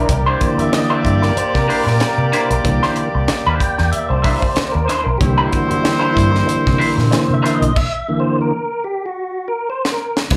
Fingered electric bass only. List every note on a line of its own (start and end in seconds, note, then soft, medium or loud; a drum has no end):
0.09 0.34 C2 loud
0.58 muted fingered electric bass stroke soft
1.04 1.30 G2 medium
1.37 muted fingered electric bass stroke soft
1.55 1.66 C3 medium
1.86 1.98 A#2 medium
2.18 2.29 C3 medium
2.50 2.62 B1 medium
2.65 2.79 C2 loud
3.15 3.26 C2 loud
3.30 muted fingered electric bass stroke medium
3.47 3.58 D#2 medium
3.79 3.90 E2 medium
3.93 muted fingered electric bass stroke soft
4.10 4.35 C2 medium
4.57 muted fingered electric bass stroke soft
4.75 4.86 D#2 medium
5.06 5.18 B1 medium
5.21 5.46 C2 loud
5.71 muted fingered electric bass stroke soft
6.17 6.42 G2 medium
6.48 muted fingered electric bass stroke soft
6.67 6.78 C3 medium
6.98 7.09 A#2 medium
7.30 7.41 C3 medium
7.62 7.73 B1 medium
10.31 10.37 C2 medium